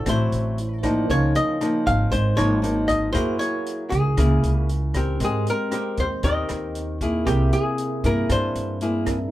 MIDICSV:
0, 0, Header, 1, 6, 480
1, 0, Start_track
1, 0, Tempo, 515021
1, 1018, Time_signature, 4, 2, 24, 8
1, 8677, End_track
2, 0, Start_track
2, 0, Title_t, "Hollow-body jazz guitar"
2, 0, Program_c, 0, 26
2, 85, Note_on_c, 0, 72, 92
2, 754, Note_off_c, 0, 72, 0
2, 1034, Note_on_c, 0, 73, 90
2, 1262, Note_off_c, 0, 73, 0
2, 1266, Note_on_c, 0, 75, 98
2, 1737, Note_off_c, 0, 75, 0
2, 1740, Note_on_c, 0, 77, 93
2, 1961, Note_off_c, 0, 77, 0
2, 1972, Note_on_c, 0, 72, 91
2, 2207, Note_on_c, 0, 73, 97
2, 2221, Note_off_c, 0, 72, 0
2, 2679, Note_off_c, 0, 73, 0
2, 2683, Note_on_c, 0, 75, 85
2, 2909, Note_off_c, 0, 75, 0
2, 2913, Note_on_c, 0, 72, 88
2, 3158, Note_off_c, 0, 72, 0
2, 3162, Note_on_c, 0, 73, 89
2, 3638, Note_on_c, 0, 68, 68
2, 3662, Note_off_c, 0, 73, 0
2, 4290, Note_off_c, 0, 68, 0
2, 4290, Note_on_c, 0, 66, 68
2, 4568, Note_off_c, 0, 66, 0
2, 4889, Note_on_c, 0, 68, 70
2, 5118, Note_off_c, 0, 68, 0
2, 5125, Note_on_c, 0, 70, 85
2, 5591, Note_on_c, 0, 72, 78
2, 5603, Note_off_c, 0, 70, 0
2, 5814, Note_off_c, 0, 72, 0
2, 5818, Note_on_c, 0, 75, 82
2, 6499, Note_off_c, 0, 75, 0
2, 6773, Note_on_c, 0, 67, 76
2, 7016, Note_off_c, 0, 67, 0
2, 7019, Note_on_c, 0, 68, 84
2, 7509, Note_off_c, 0, 68, 0
2, 7512, Note_on_c, 0, 70, 85
2, 7751, Note_off_c, 0, 70, 0
2, 7751, Note_on_c, 0, 72, 90
2, 8427, Note_off_c, 0, 72, 0
2, 8677, End_track
3, 0, Start_track
3, 0, Title_t, "Tine electric piano"
3, 0, Program_c, 1, 4
3, 0, Control_c, 1, 64, 127
3, 0, Note_on_c, 1, 64, 49
3, 0, Note_on_c, 1, 72, 46
3, 0, Note_on_c, 1, 74, 44
3, 0, Note_on_c, 1, 78, 51
3, 730, Note_off_c, 1, 64, 0
3, 738, Note_off_c, 1, 72, 0
3, 747, Note_off_c, 1, 74, 0
3, 757, Note_on_c, 1, 64, 43
3, 758, Note_off_c, 1, 78, 0
3, 770, Note_on_c, 1, 72, 40
3, 783, Note_on_c, 1, 74, 41
3, 790, Note_on_c, 1, 78, 48
3, 983, Note_on_c, 1, 63, 50
3, 1003, Note_on_c, 1, 70, 47
3, 1007, Note_off_c, 1, 64, 0
3, 1014, Note_off_c, 1, 72, 0
3, 1020, Note_off_c, 1, 74, 0
3, 1020, Note_on_c, 1, 73, 47
3, 1023, Note_off_c, 1, 78, 0
3, 1028, Control_c, 1, 64, 0
3, 1039, Note_on_c, 1, 77, 55
3, 1210, Control_c, 1, 64, 127
3, 2880, Note_off_c, 1, 63, 0
3, 2890, Note_off_c, 1, 70, 0
3, 2898, Note_on_c, 1, 64, 47
3, 2899, Note_off_c, 1, 73, 0
3, 2908, Note_off_c, 1, 77, 0
3, 2918, Note_on_c, 1, 68, 43
3, 2940, Note_on_c, 1, 70, 45
3, 2947, Control_c, 1, 64, 0
3, 2951, Note_on_c, 1, 78, 54
3, 3108, Control_c, 1, 64, 127
3, 4798, Note_off_c, 1, 64, 0
3, 4808, Note_off_c, 1, 68, 0
3, 4819, Note_off_c, 1, 70, 0
3, 4822, Note_on_c, 1, 60, 50
3, 4825, Note_off_c, 1, 78, 0
3, 4864, Control_c, 1, 64, 0
3, 4864, Note_on_c, 1, 70, 42
3, 4884, Note_on_c, 1, 79, 49
3, 5010, Control_c, 1, 64, 127
3, 6721, Note_off_c, 1, 60, 0
3, 6743, Note_off_c, 1, 70, 0
3, 6747, Note_on_c, 1, 60, 48
3, 6753, Note_off_c, 1, 79, 0
3, 6763, Note_on_c, 1, 68, 42
3, 6781, Note_on_c, 1, 70, 47
3, 6787, Control_c, 1, 64, 0
3, 6802, Note_on_c, 1, 76, 53
3, 6931, Control_c, 1, 64, 127
3, 8409, Note_off_c, 1, 60, 0
3, 8417, Note_off_c, 1, 68, 0
3, 8426, Note_off_c, 1, 70, 0
3, 8432, Note_on_c, 1, 60, 44
3, 8437, Note_off_c, 1, 76, 0
3, 8438, Note_on_c, 1, 68, 42
3, 8447, Note_on_c, 1, 70, 40
3, 8457, Note_on_c, 1, 76, 48
3, 8670, Note_off_c, 1, 68, 0
3, 8677, Note_off_c, 1, 60, 0
3, 8677, Note_off_c, 1, 70, 0
3, 8677, Note_off_c, 1, 76, 0
3, 8677, End_track
4, 0, Start_track
4, 0, Title_t, "Nylon-string guitar"
4, 0, Program_c, 2, 24
4, 60, Note_on_c, 2, 45, 56
4, 65, Note_on_c, 2, 54, 55
4, 65, Note_on_c, 2, 60, 58
4, 72, Note_on_c, 2, 64, 66
4, 538, Note_off_c, 2, 54, 0
4, 539, Note_off_c, 2, 60, 0
4, 541, Note_off_c, 2, 64, 0
4, 774, Note_on_c, 2, 53, 57
4, 776, Note_on_c, 2, 58, 65
4, 780, Note_on_c, 2, 63, 64
4, 994, Note_off_c, 2, 45, 0
4, 1022, Note_on_c, 2, 49, 55
4, 1457, Note_off_c, 2, 53, 0
4, 1457, Note_off_c, 2, 58, 0
4, 1459, Note_off_c, 2, 63, 0
4, 1501, Note_on_c, 2, 53, 52
4, 1504, Note_on_c, 2, 58, 60
4, 1509, Note_on_c, 2, 63, 66
4, 1954, Note_off_c, 2, 49, 0
4, 1975, Note_off_c, 2, 53, 0
4, 1977, Note_off_c, 2, 58, 0
4, 1978, Note_off_c, 2, 63, 0
4, 1979, Note_on_c, 2, 44, 57
4, 2202, Note_on_c, 2, 53, 58
4, 2206, Note_on_c, 2, 58, 56
4, 2214, Note_on_c, 2, 63, 66
4, 2410, Note_off_c, 2, 53, 0
4, 2412, Note_off_c, 2, 58, 0
4, 2416, Note_off_c, 2, 63, 0
4, 2441, Note_on_c, 2, 53, 58
4, 2444, Note_on_c, 2, 58, 58
4, 2454, Note_on_c, 2, 63, 68
4, 2890, Note_off_c, 2, 53, 0
4, 2891, Note_off_c, 2, 58, 0
4, 2896, Note_off_c, 2, 63, 0
4, 2912, Note_off_c, 2, 44, 0
4, 2921, Note_on_c, 2, 54, 56
4, 2922, Note_on_c, 2, 58, 53
4, 2922, Note_on_c, 2, 64, 57
4, 2927, Note_on_c, 2, 68, 65
4, 3571, Note_off_c, 2, 58, 0
4, 3574, Note_off_c, 2, 64, 0
4, 3575, Note_off_c, 2, 68, 0
4, 3864, Note_off_c, 2, 54, 0
4, 3888, Note_on_c, 2, 58, 57
4, 3892, Note_on_c, 2, 49, 55
4, 3899, Note_on_c, 2, 64, 55
4, 3899, Note_on_c, 2, 68, 65
4, 4368, Note_off_c, 2, 58, 0
4, 4372, Note_off_c, 2, 64, 0
4, 4373, Note_off_c, 2, 68, 0
4, 4615, Note_on_c, 2, 60, 56
4, 4625, Note_on_c, 2, 67, 63
4, 4627, Note_on_c, 2, 70, 66
4, 4830, Note_off_c, 2, 49, 0
4, 4857, Note_on_c, 2, 56, 54
4, 5296, Note_off_c, 2, 60, 0
4, 5301, Note_off_c, 2, 67, 0
4, 5301, Note_off_c, 2, 70, 0
4, 5324, Note_on_c, 2, 60, 54
4, 5333, Note_on_c, 2, 67, 51
4, 5336, Note_on_c, 2, 70, 63
4, 5638, Note_off_c, 2, 60, 0
4, 5643, Note_off_c, 2, 67, 0
4, 5643, Note_off_c, 2, 70, 0
4, 5791, Note_off_c, 2, 56, 0
4, 5816, Note_on_c, 2, 51, 53
4, 5817, Note_on_c, 2, 60, 60
4, 5820, Note_on_c, 2, 67, 55
4, 5825, Note_on_c, 2, 70, 62
4, 6497, Note_off_c, 2, 60, 0
4, 6499, Note_off_c, 2, 67, 0
4, 6501, Note_off_c, 2, 70, 0
4, 6541, Note_on_c, 2, 58, 61
4, 6545, Note_on_c, 2, 64, 65
4, 6547, Note_on_c, 2, 68, 71
4, 6752, Note_off_c, 2, 51, 0
4, 6773, Note_on_c, 2, 48, 53
4, 7461, Note_off_c, 2, 58, 0
4, 7462, Note_off_c, 2, 64, 0
4, 7462, Note_off_c, 2, 68, 0
4, 7498, Note_on_c, 2, 58, 62
4, 7500, Note_on_c, 2, 64, 57
4, 7505, Note_on_c, 2, 68, 65
4, 7711, Note_off_c, 2, 48, 0
4, 7740, Note_on_c, 2, 43, 56
4, 8179, Note_off_c, 2, 64, 0
4, 8180, Note_off_c, 2, 58, 0
4, 8183, Note_off_c, 2, 68, 0
4, 8219, Note_on_c, 2, 58, 62
4, 8223, Note_on_c, 2, 64, 54
4, 8227, Note_on_c, 2, 68, 70
4, 8541, Note_off_c, 2, 58, 0
4, 8543, Note_off_c, 2, 64, 0
4, 8545, Note_off_c, 2, 68, 0
4, 8675, Note_off_c, 2, 43, 0
4, 8677, End_track
5, 0, Start_track
5, 0, Title_t, "Upright bass"
5, 0, Program_c, 3, 32
5, 61, Note_on_c, 3, 33, 87
5, 283, Note_off_c, 3, 33, 0
5, 298, Note_on_c, 3, 33, 83
5, 980, Note_off_c, 3, 33, 0
5, 1024, Note_on_c, 3, 37, 92
5, 1244, Note_off_c, 3, 37, 0
5, 1742, Note_on_c, 3, 32, 83
5, 1962, Note_off_c, 3, 32, 0
5, 1978, Note_on_c, 3, 32, 82
5, 2200, Note_off_c, 3, 32, 0
5, 2219, Note_on_c, 3, 32, 81
5, 2899, Note_off_c, 3, 32, 0
5, 2934, Note_on_c, 3, 42, 82
5, 3157, Note_off_c, 3, 42, 0
5, 3656, Note_on_c, 3, 37, 90
5, 3878, Note_off_c, 3, 37, 0
5, 3890, Note_on_c, 3, 37, 89
5, 4115, Note_off_c, 3, 37, 0
5, 4131, Note_on_c, 3, 37, 82
5, 4815, Note_off_c, 3, 37, 0
5, 4848, Note_on_c, 3, 44, 90
5, 5074, Note_off_c, 3, 44, 0
5, 5573, Note_on_c, 3, 39, 84
5, 5797, Note_off_c, 3, 39, 0
5, 5808, Note_on_c, 3, 39, 85
5, 6034, Note_off_c, 3, 39, 0
5, 6054, Note_on_c, 3, 39, 82
5, 6738, Note_off_c, 3, 39, 0
5, 6771, Note_on_c, 3, 36, 86
5, 6996, Note_off_c, 3, 36, 0
5, 7492, Note_on_c, 3, 43, 82
5, 7717, Note_off_c, 3, 43, 0
5, 7731, Note_on_c, 3, 43, 86
5, 7957, Note_off_c, 3, 43, 0
5, 7971, Note_on_c, 3, 43, 82
5, 8657, Note_off_c, 3, 43, 0
5, 8677, End_track
6, 0, Start_track
6, 0, Title_t, "Drums"
6, 55, Note_on_c, 9, 37, 59
6, 55, Note_on_c, 9, 42, 61
6, 59, Note_on_c, 9, 36, 61
6, 148, Note_off_c, 9, 37, 0
6, 148, Note_off_c, 9, 42, 0
6, 152, Note_off_c, 9, 36, 0
6, 299, Note_on_c, 9, 42, 42
6, 392, Note_off_c, 9, 42, 0
6, 540, Note_on_c, 9, 42, 38
6, 633, Note_off_c, 9, 42, 0
6, 777, Note_on_c, 9, 37, 56
6, 777, Note_on_c, 9, 42, 43
6, 781, Note_on_c, 9, 36, 53
6, 870, Note_off_c, 9, 37, 0
6, 870, Note_off_c, 9, 42, 0
6, 874, Note_off_c, 9, 36, 0
6, 1022, Note_on_c, 9, 36, 56
6, 1025, Note_on_c, 9, 42, 53
6, 1115, Note_off_c, 9, 36, 0
6, 1118, Note_off_c, 9, 42, 0
6, 1259, Note_on_c, 9, 42, 44
6, 1352, Note_off_c, 9, 42, 0
6, 1500, Note_on_c, 9, 37, 56
6, 1500, Note_on_c, 9, 42, 42
6, 1594, Note_off_c, 9, 37, 0
6, 1594, Note_off_c, 9, 42, 0
6, 1739, Note_on_c, 9, 36, 51
6, 1742, Note_on_c, 9, 42, 43
6, 1832, Note_off_c, 9, 36, 0
6, 1835, Note_off_c, 9, 42, 0
6, 1978, Note_on_c, 9, 36, 63
6, 1979, Note_on_c, 9, 42, 60
6, 2071, Note_off_c, 9, 36, 0
6, 2072, Note_off_c, 9, 42, 0
6, 2219, Note_on_c, 9, 37, 56
6, 2219, Note_on_c, 9, 42, 41
6, 2312, Note_off_c, 9, 37, 0
6, 2312, Note_off_c, 9, 42, 0
6, 2456, Note_on_c, 9, 42, 42
6, 2549, Note_off_c, 9, 42, 0
6, 2692, Note_on_c, 9, 42, 46
6, 2693, Note_on_c, 9, 36, 54
6, 2785, Note_off_c, 9, 42, 0
6, 2786, Note_off_c, 9, 36, 0
6, 2930, Note_on_c, 9, 37, 55
6, 2930, Note_on_c, 9, 42, 63
6, 2932, Note_on_c, 9, 36, 56
6, 3024, Note_off_c, 9, 37, 0
6, 3024, Note_off_c, 9, 42, 0
6, 3026, Note_off_c, 9, 36, 0
6, 3175, Note_on_c, 9, 42, 49
6, 3269, Note_off_c, 9, 42, 0
6, 3414, Note_on_c, 9, 42, 45
6, 3507, Note_off_c, 9, 42, 0
6, 3653, Note_on_c, 9, 36, 58
6, 3653, Note_on_c, 9, 42, 46
6, 3746, Note_off_c, 9, 42, 0
6, 3747, Note_off_c, 9, 36, 0
6, 3890, Note_on_c, 9, 37, 64
6, 3890, Note_on_c, 9, 42, 63
6, 3893, Note_on_c, 9, 36, 62
6, 3983, Note_off_c, 9, 37, 0
6, 3983, Note_off_c, 9, 42, 0
6, 3987, Note_off_c, 9, 36, 0
6, 4133, Note_on_c, 9, 42, 41
6, 4226, Note_off_c, 9, 42, 0
6, 4372, Note_on_c, 9, 42, 38
6, 4465, Note_off_c, 9, 42, 0
6, 4605, Note_on_c, 9, 37, 59
6, 4605, Note_on_c, 9, 42, 42
6, 4611, Note_on_c, 9, 36, 56
6, 4699, Note_off_c, 9, 37, 0
6, 4699, Note_off_c, 9, 42, 0
6, 4704, Note_off_c, 9, 36, 0
6, 4846, Note_on_c, 9, 42, 58
6, 4852, Note_on_c, 9, 36, 60
6, 4939, Note_off_c, 9, 42, 0
6, 4945, Note_off_c, 9, 36, 0
6, 5094, Note_on_c, 9, 42, 45
6, 5187, Note_off_c, 9, 42, 0
6, 5326, Note_on_c, 9, 37, 54
6, 5326, Note_on_c, 9, 42, 42
6, 5420, Note_off_c, 9, 37, 0
6, 5420, Note_off_c, 9, 42, 0
6, 5566, Note_on_c, 9, 42, 41
6, 5572, Note_on_c, 9, 36, 51
6, 5659, Note_off_c, 9, 42, 0
6, 5665, Note_off_c, 9, 36, 0
6, 5805, Note_on_c, 9, 42, 56
6, 5811, Note_on_c, 9, 36, 61
6, 5898, Note_off_c, 9, 42, 0
6, 5905, Note_off_c, 9, 36, 0
6, 6046, Note_on_c, 9, 37, 57
6, 6046, Note_on_c, 9, 42, 39
6, 6139, Note_off_c, 9, 37, 0
6, 6139, Note_off_c, 9, 42, 0
6, 6291, Note_on_c, 9, 42, 39
6, 6384, Note_off_c, 9, 42, 0
6, 6533, Note_on_c, 9, 36, 56
6, 6533, Note_on_c, 9, 42, 42
6, 6626, Note_off_c, 9, 36, 0
6, 6626, Note_off_c, 9, 42, 0
6, 6770, Note_on_c, 9, 37, 57
6, 6770, Note_on_c, 9, 42, 59
6, 6771, Note_on_c, 9, 36, 62
6, 6863, Note_off_c, 9, 37, 0
6, 6863, Note_off_c, 9, 42, 0
6, 6865, Note_off_c, 9, 36, 0
6, 7013, Note_on_c, 9, 42, 44
6, 7107, Note_off_c, 9, 42, 0
6, 7250, Note_on_c, 9, 42, 44
6, 7343, Note_off_c, 9, 42, 0
6, 7493, Note_on_c, 9, 36, 54
6, 7493, Note_on_c, 9, 42, 46
6, 7586, Note_off_c, 9, 36, 0
6, 7586, Note_off_c, 9, 42, 0
6, 7730, Note_on_c, 9, 37, 60
6, 7730, Note_on_c, 9, 42, 62
6, 7732, Note_on_c, 9, 36, 61
6, 7824, Note_off_c, 9, 37, 0
6, 7824, Note_off_c, 9, 42, 0
6, 7825, Note_off_c, 9, 36, 0
6, 7971, Note_on_c, 9, 42, 44
6, 8065, Note_off_c, 9, 42, 0
6, 8208, Note_on_c, 9, 42, 42
6, 8301, Note_off_c, 9, 42, 0
6, 8447, Note_on_c, 9, 37, 62
6, 8447, Note_on_c, 9, 42, 45
6, 8452, Note_on_c, 9, 36, 54
6, 8540, Note_off_c, 9, 37, 0
6, 8540, Note_off_c, 9, 42, 0
6, 8545, Note_off_c, 9, 36, 0
6, 8677, End_track
0, 0, End_of_file